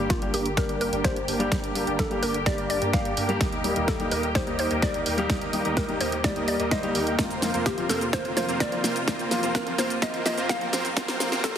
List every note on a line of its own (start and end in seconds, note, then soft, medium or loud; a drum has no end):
0.00 0.31 G1 medium
0.00 3.37 D3 medium
0.00 0.19 G3 medium
0.00 0.19 A#3 medium
0.00 0.31 A#3 medium
0.00 10.93 A#3 medium
0.00 0.19 D4 medium
0.00 0.31 D4 medium
0.00 0.19 G4 medium
0.00 0.31 G4 medium
0.00 7.15 G4 medium
0.00 0.31 A#4 medium
0.00 0.31 D5 loud
0.00 riser medium
0.10 0.34 F4 medium
0.10 kick loud
0.10 snare soft
0.10 closed hi-hat medium
0.21 0.31 G3 medium
0.21 0.31 A#3 medium
0.21 0.32 D4 medium
0.21 0.32 G4 medium
0.21 closed hi-hat soft
0.34 0.67 G1 medium
0.34 0.48 A#3 medium
0.34 0.48 D4 medium
0.34 0.48 G4 medium
0.34 0.56 G4 medium
0.34 0.48 A#4 medium
0.34 0.48 D5 loud
0.34 open hi-hat loud
0.46 closed hi-hat soft
0.57 1.01 G3 medium
0.57 1.02 A#3 medium
0.57 1.02 D4 medium
0.57 1.02 G4 medium
0.57 0.79 A#4 loud
0.57 kick loud
0.57 snare soft
0.57 closed hi-hat medium
0.69 0.90 G1 medium
0.69 0.89 A#3 medium
0.69 0.89 D4 medium
0.69 0.89 G4 medium
0.69 0.89 A#4 medium
0.69 0.89 D5 medium
0.69 closed hi-hat soft
0.81 1.05 A#4 loud
0.81 open hi-hat loud
0.93 1.26 G1 medium
0.93 1.25 A#3 medium
0.93 1.25 D4 medium
0.93 1.25 G4 medium
0.93 1.25 A#4 medium
0.93 1.25 D5 medium
0.93 closed hi-hat soft
1.04 1.14 G3 medium
1.04 1.14 A#3 medium
1.04 1.14 D4 medium
1.04 1.14 G4 medium
1.04 1.48 C5 loud
1.04 kick loud
1.04 snare soft
1.04 closed hi-hat medium
1.16 closed hi-hat soft
1.28 1.49 G1 medium
1.28 1.49 A#3 medium
1.28 1.49 D4 medium
1.28 1.49 G4 medium
1.28 1.49 A#4 medium
1.28 1.49 G5 loud
1.28 open hi-hat loud
1.39 1.55 G3 medium
1.39 1.55 A#3 medium
1.39 1.55 D4 medium
1.39 1.55 G4 loud
1.39 closed hi-hat soft
1.52 1.85 G1 medium
1.52 1.84 A#3 medium
1.52 1.84 D4 medium
1.52 1.84 G4 medium
1.52 1.84 A#4 medium
1.52 1.84 D5 medium
1.52 kick loud
1.52 snare soft
1.52 closed hi-hat medium
1.64 closed hi-hat soft
1.75 2.08 G3 medium
1.75 2.08 A#3 medium
1.75 2.08 D4 medium
1.75 2.08 G4 medium
1.75 open hi-hat loud
1.87 2.20 G1 medium
1.87 2.20 A#3 medium
1.87 2.20 D4 medium
1.87 2.20 G4 medium
1.87 2.20 A#4 medium
1.87 2.20 D5 loud
1.87 closed hi-hat soft
1.99 2.23 A4 medium
1.99 kick loud
1.99 snare medium
1.99 closed hi-hat medium
2.10 2.20 G3 medium
2.10 2.20 A#3 medium
2.10 2.20 D4 medium
2.10 2.21 G4 medium
2.10 closed hi-hat soft
2.22 2.56 G1 medium
2.22 2.37 A#3 loud
2.22 2.37 D4 medium
2.22 2.37 G4 medium
2.22 2.47 A#4 medium
2.22 2.37 A#4 medium
2.22 2.37 D5 loud
2.22 open hi-hat loud
2.34 closed hi-hat soft
2.46 2.90 G3 medium
2.46 2.91 A#3 medium
2.46 2.91 D4 medium
2.46 2.91 G4 medium
2.46 2.69 D5 loud
2.46 kick loud
2.46 snare medium
2.46 closed hi-hat medium
2.58 2.79 G1 medium
2.58 2.78 A#3 medium
2.58 2.78 D4 medium
2.58 2.78 G4 medium
2.58 2.78 A#4 medium
2.58 2.78 D5 loud
2.58 closed hi-hat soft
2.70 2.94 D5 loud
2.70 open hi-hat loud
2.82 3.15 G2 medium
2.82 3.14 A#3 medium
2.82 3.14 D4 medium
2.82 3.14 G4 medium
2.82 3.14 A#4 medium
2.82 3.14 D5 medium
2.82 closed hi-hat soft
2.93 3.03 G3 medium
2.93 3.03 A#3 medium
2.93 3.03 D4 medium
2.93 3.03 G4 medium
2.93 3.37 F5 loud
2.93 kick loud
2.93 snare medium
2.93 closed hi-hat medium
3.05 closed hi-hat soft
3.17 3.38 G2 loud
3.17 3.38 A#3 medium
3.17 3.38 D4 medium
3.17 3.38 G4 medium
3.17 3.38 A#4 medium
3.17 3.38 G5 medium
3.17 open hi-hat loud
3.28 3.39 G3 medium
3.28 3.39 A#3 medium
3.28 3.39 D4 medium
3.28 3.40 G4 loud
3.28 closed hi-hat soft
3.41 3.74 D#1 medium
3.41 7.15 D#3 medium
3.41 3.73 A#3 medium
3.41 3.73 D#4 medium
3.41 3.73 G4 medium
3.41 3.73 A#4 medium
3.41 3.73 D#5 medium
3.41 kick loud
3.41 snare medium
3.41 closed hi-hat medium
3.53 closed hi-hat soft
3.64 3.97 G3 medium
3.64 3.97 A#3 medium
3.64 3.97 D#4 medium
3.64 3.97 G4 medium
3.64 open hi-hat loud
3.76 4.09 D#1 medium
3.76 4.09 A#3 loud
3.76 4.09 D#4 medium
3.76 4.09 G4 medium
3.76 4.09 A#4 medium
3.76 4.09 D#5 loud
3.76 closed hi-hat soft
3.88 4.12 A4 medium
3.88 kick loud
3.88 snare medium
3.88 closed hi-hat medium
3.99 4.09 G3 medium
3.99 4.09 A#3 medium
3.99 4.09 D#4 medium
3.99 4.10 G4 medium
3.99 closed hi-hat soft
4.11 4.45 D#1 loud
4.11 4.26 A#3 loud
4.11 4.26 D#4 medium
4.11 4.26 G4 medium
4.11 4.26 A#4 medium
4.11 4.34 A#4 medium
4.11 4.26 D#5 loud
4.11 open hi-hat loud
4.23 closed hi-hat soft
4.35 4.79 G3 medium
4.35 4.80 A#3 medium
4.35 4.80 D#4 medium
4.35 4.80 G4 medium
4.35 4.58 C5 loud
4.35 kick loud
4.35 snare medium
4.35 closed hi-hat medium
4.47 4.68 D#1 medium
4.47 4.67 A#3 medium
4.47 4.67 D#4 medium
4.47 4.67 G4 medium
4.47 4.67 A#4 medium
4.47 4.67 D#5 loud
4.47 closed hi-hat soft
4.59 4.81 C5 loud
4.59 open hi-hat loud
4.71 5.04 D#1 medium
4.71 5.03 A#3 medium
4.71 5.03 D#4 medium
4.71 5.03 G4 medium
4.71 5.03 A#4 medium
4.71 5.03 D#5 medium
4.71 closed hi-hat soft
4.82 4.92 G3 medium
4.82 4.92 A#3 medium
4.82 4.92 D#4 medium
4.82 4.92 G4 medium
4.82 5.26 D5 loud
4.82 kick loud
4.82 snare medium
4.82 closed hi-hat medium
4.94 closed hi-hat soft
5.06 5.27 D#1 medium
5.06 5.27 A#3 medium
5.06 5.27 D#4 medium
5.06 5.27 G4 medium
5.06 5.27 A#4 medium
5.06 5.27 G5 loud
5.06 open hi-hat loud
5.17 5.33 G3 medium
5.17 5.33 A#3 medium
5.17 5.33 D#4 medium
5.17 5.33 G4 loud
5.17 closed hi-hat soft
5.30 5.63 D#1 loud
5.30 5.62 A#3 medium
5.30 5.62 D#4 medium
5.30 5.62 G4 medium
5.30 5.62 A#4 medium
5.30 5.62 D#5 medium
5.30 kick loud
5.30 snare medium
5.30 closed hi-hat medium
5.42 closed hi-hat soft
5.53 5.86 G3 medium
5.53 5.86 A#3 medium
5.53 5.86 D#4 medium
5.53 5.86 G4 medium
5.53 open hi-hat loud
5.65 5.98 D#1 medium
5.65 5.98 A#3 loud
5.65 5.98 D#4 medium
5.65 5.98 G4 medium
5.65 5.98 A#4 medium
5.65 5.98 D#5 loud
5.65 closed hi-hat soft
5.77 6.01 A#4 medium
5.77 kick loud
5.77 snare medium
5.77 closed hi-hat medium
5.88 5.98 G3 medium
5.88 5.98 A#3 medium
5.88 5.98 D#4 medium
5.88 5.99 G4 medium
5.88 closed hi-hat soft
6.01 6.34 D#1 loud
6.01 6.15 A#3 medium
6.01 6.15 D#4 medium
6.01 6.15 G4 medium
6.01 6.15 A#4 medium
6.01 6.25 C5 medium
6.01 6.15 D#5 loud
6.01 open hi-hat loud
6.12 closed hi-hat soft
6.24 6.68 G3 medium
6.24 6.69 A#3 medium
6.24 6.69 D#4 medium
6.24 6.69 G4 medium
6.24 6.46 D5 loud
6.24 kick loud
6.24 snare medium
6.24 closed hi-hat medium
6.36 6.57 D#1 medium
6.36 6.56 A#3 medium
6.36 6.56 D#4 medium
6.36 6.56 G4 medium
6.36 6.56 A#4 medium
6.36 6.56 D#5 medium
6.36 closed hi-hat soft
6.48 6.70 D5 loud
6.48 open hi-hat loud
6.59 6.93 D#1 medium
6.59 6.92 A#3 medium
6.59 6.92 D#4 medium
6.59 6.92 G4 medium
6.59 6.92 A#4 medium
6.59 6.92 D#5 medium
6.59 closed hi-hat soft
6.71 6.81 G3 medium
6.71 6.81 A#3 medium
6.71 6.81 D#4 medium
6.71 6.81 C5 medium
6.71 7.16 D#5 loud
6.71 kick loud
6.71 snare medium
6.71 closed hi-hat medium
6.83 6.98 G3 medium
6.83 6.98 A#3 medium
6.83 6.99 D#4 medium
6.83 6.99 G4 loud
6.83 closed hi-hat soft
6.95 7.16 D#2 medium
6.95 7.16 A#3 medium
6.95 7.16 D#4 medium
6.95 7.16 G4 medium
6.95 7.16 A#4 medium
6.95 7.16 G5 medium
6.95 open hi-hat loud
7.07 closed hi-hat soft
7.19 7.52 F1 loud
7.19 10.93 C3 medium
7.19 7.51 A#3 medium
7.19 7.51 C4 medium
7.19 7.51 F4 medium
7.19 10.93 F4 medium
7.19 7.51 A#4 medium
7.19 7.51 C5 medium
7.19 kick loud
7.19 snare medium
7.19 closed hi-hat medium
7.19 cabasa soft
7.31 closed hi-hat soft
7.31 cabasa soft
7.42 7.75 F3 medium
7.42 7.75 A#3 medium
7.42 7.75 C4 medium
7.42 7.75 F4 medium
7.42 snare medium
7.42 open hi-hat loud
7.42 cabasa medium
7.54 7.87 F1 loud
7.54 7.87 A#3 medium
7.54 7.87 C4 medium
7.54 7.87 F4 medium
7.54 7.87 A#4 medium
7.54 7.87 C5 loud
7.54 closed hi-hat soft
7.54 cabasa soft
7.66 7.88 G4 medium
7.66 kick loud
7.66 snare medium
7.66 closed hi-hat medium
7.66 cabasa soft
7.77 7.87 F3 medium
7.77 7.87 A#3 medium
7.77 7.87 C4 medium
7.77 7.88 F4 medium
7.77 closed hi-hat soft
7.89 8.11 F1 loud
7.89 8.04 A#3 medium
7.89 8.04 C4 medium
7.89 8.04 F4 medium
7.89 8.14 A4 medium
7.89 8.04 A#4 medium
7.89 8.04 C5 loud
7.89 snare medium
7.89 open hi-hat loud
7.89 cabasa medium
8.01 closed hi-hat soft
8.01 cabasa soft
8.13 8.46 F1 loud
8.13 8.46 A#3 medium
8.13 8.46 C4 medium
8.13 8.46 F4 medium
8.13 8.46 A#4 medium
8.13 8.36 C5 loud
8.13 8.46 C5 medium
8.13 kick loud
8.13 snare medium
8.13 closed hi-hat medium
8.13 cabasa soft
8.25 closed hi-hat soft
8.36 8.69 F3 medium
8.36 8.69 A#3 medium
8.36 8.70 C4 medium
8.36 8.70 F4 medium
8.36 8.59 C5 loud
8.36 snare medium
8.36 open hi-hat loud
8.36 cabasa medium
8.48 8.82 F1 medium
8.48 8.81 A#3 medium
8.48 8.81 C4 medium
8.48 8.81 F4 medium
8.48 8.81 A#4 medium
8.48 8.81 C5 loud
8.48 closed hi-hat soft
8.48 cabasa soft
8.60 9.05 D5 loud
8.60 kick loud
8.60 snare medium
8.60 closed hi-hat medium
8.60 cabasa soft
8.72 8.82 F3 medium
8.72 8.82 A#3 medium
8.72 8.82 C4 medium
8.72 8.82 F4 medium
8.72 closed hi-hat soft
8.84 9.05 F1 medium
8.84 8.98 A#3 medium
8.84 8.98 C4 medium
8.84 8.98 F4 medium
8.84 8.98 A#4 medium
8.84 8.98 C5 loud
8.84 snare medium
8.84 open hi-hat loud
8.84 cabasa medium
8.96 closed hi-hat soft
8.96 cabasa soft
9.08 9.41 F1 loud
9.08 9.40 A#3 medium
9.08 9.40 C4 medium
9.08 9.40 F4 medium
9.08 9.40 A#4 medium
9.08 9.40 C5 medium
9.08 kick loud
9.08 snare medium
9.08 closed hi-hat medium
9.08 cabasa soft
9.19 closed hi-hat soft
9.19 cabasa soft
9.31 9.64 F3 medium
9.31 9.64 A#3 medium
9.31 9.64 C4 medium
9.31 9.64 F4 medium
9.31 snare medium
9.31 open hi-hat loud
9.31 cabasa medium
9.43 9.76 F1 loud
9.43 9.76 A#3 medium
9.43 9.76 C4 medium
9.43 9.76 F4 medium
9.43 9.76 A#4 medium
9.43 9.76 C5 loud
9.43 closed hi-hat soft
9.43 cabasa soft
9.55 9.79 A#4 medium
9.55 kick loud
9.55 snare medium
9.55 closed hi-hat medium
9.55 cabasa soft
9.66 9.76 F3 medium
9.66 9.76 A#3 medium
9.66 9.77 C4 medium
9.66 9.77 F4 medium
9.66 closed hi-hat soft
9.78 10.00 F1 medium
9.78 9.93 A#3 medium
9.78 9.93 C4 medium
9.78 9.93 F4 medium
9.78 9.93 A#4 medium
9.78 10.03 C5 medium
9.78 9.93 C5 loud
9.78 snare medium
9.78 open hi-hat loud
9.78 cabasa medium
9.90 closed hi-hat soft
9.90 cabasa soft
10.02 10.35 F1 medium
10.02 10.35 A#3 medium
10.02 10.35 C4 medium
10.02 10.35 F4 medium
10.02 10.35 A#4 medium
10.02 10.35 C5 medium
10.02 10.24 D#5 loud
10.02 kick loud
10.02 snare medium
10.02 closed hi-hat medium
10.02 cabasa soft
10.14 closed hi-hat soft
10.25 10.58 F3 medium
10.25 10.58 A#3 medium
10.25 10.59 C4 medium
10.25 10.59 F4 medium
10.25 10.50 D#5 loud
10.25 snare medium
10.25 open hi-hat loud
10.25 cabasa medium
10.37 10.71 F2 medium
10.37 10.70 A#3 medium
10.37 10.70 C4 medium
10.37 10.70 F4 medium
10.37 10.70 A#4 medium
10.37 10.70 C5 loud
10.37 closed hi-hat soft
10.37 cabasa soft
10.49 10.94 F5 loud
10.49 kick loud
10.49 snare medium
10.49 closed hi-hat medium
10.49 cabasa soft
10.61 10.71 F3 medium
10.61 10.71 A#3 medium
10.61 10.71 C4 medium
10.61 10.71 F4 medium
10.61 closed hi-hat soft
10.73 10.94 F2 loud
10.73 10.87 A#3 medium
10.73 10.87 C4 medium
10.73 10.87 F4 medium
10.73 10.87 A#4 medium
10.73 10.87 C5 loud
10.73 snare medium
10.73 open hi-hat loud
10.73 cabasa medium
10.85 closed hi-hat soft
10.85 cabasa soft
10.96 11.30 C2 medium
10.96 11.58 C3 medium
10.96 11.58 G3 medium
10.96 11.29 A#3 medium
10.96 11.29 C4 medium
10.96 11.58 D#4 medium
10.96 11.29 F4 medium
10.96 11.29 A#4 medium
10.96 11.29 C5 medium
10.96 kick loud
10.96 snare medium
10.96 closed hi-hat medium
10.96 cabasa soft
11.08 snare medium
11.08 closed hi-hat soft
11.08 cabasa soft
11.20 11.42 F3 medium
11.20 11.42 A#3 medium
11.20 11.42 C4 medium
11.20 11.42 F4 medium
11.20 snare medium
11.20 open hi-hat loud
11.20 cabasa medium
11.32 11.42 C2 loud
11.32 11.42 A#3 loud
11.32 11.42 C4 medium
11.32 11.42 F4 medium
11.32 11.42 A#4 medium
11.32 11.42 C5 loud
11.32 snare medium
11.32 closed hi-hat soft
11.32 cabasa soft
11.44 11.58 C2 loud
11.44 11.58 A#3 medium
11.44 11.58 C4 medium
11.44 11.58 F4 medium
11.44 11.58 A4 medium
11.44 11.58 A#4 medium
11.44 11.58 C5 medium
11.44 kick loud
11.44 snare medium
11.44 closed hi-hat loud
11.44 cabasa soft